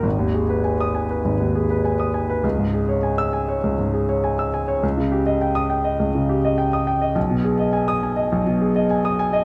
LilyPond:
\new Staff \with { instrumentName = "Grand piano" } { \time 4/4 \key gis \minor \tempo 4 = 102 << { r4 r16 dis'''8 r2 r16 | r4 r16 e'''8 r2 r16 | r4 r16 dis'''8 r2 r16 | r4 r16 dis'''8 r2 r16 | } \\ { gis,,16 dis,16 gis'16 b'16 gis''8 gis''16 b'16 gis,,16 dis,16 gis'16 b'16 gis''16 dis'''16 gis''16 b'16 | cis,16 gis,16 gis'16 cis''16 gis''8 gis''16 cis''16 cis,16 gis,16 gis'16 cis''16 gis''16 e'''16 gis''16 cis''16 | cis,16 cis16 g'16 dis''16 g''8 g''16 dis''16 cis,16 cis16 g'16 dis''16 g''16 dis'''16 g''16 dis''16 | b,,16 b,16 gis'16 dis''16 gis''8 gis''16 dis''16 b,,16 b,16 gis'16 dis''16 gis''16 dis'''16 gis''16 dis''16 | } >> }